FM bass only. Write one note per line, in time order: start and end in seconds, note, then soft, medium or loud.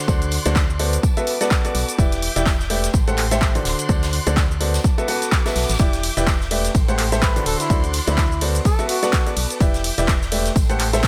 0.08 0.38 D2 loud
0.46 0.98 D2 loud
1.75 1.84 B1 medium
1.98 2.29 E1 loud
2.36 2.88 E1 loud
2.94 3.59 A1 medium
3.65 3.74 D1 medium
3.89 4.19 D2 loud
4.27 4.79 D2 loud
5.56 5.65 B1 medium
5.69 5.76 A1 medium
5.79 6.10 E1 loud
6.17 6.69 E1 loud
6.75 7.40 A1 loud
7.46 7.55 D1 medium
7.70 8.00 D2 loud
8.07 8.60 D2 loud
9.37 9.46 B1 medium
9.60 9.91 E1 loud
9.98 10.50 E1 loud
10.56 11.08 A1 medium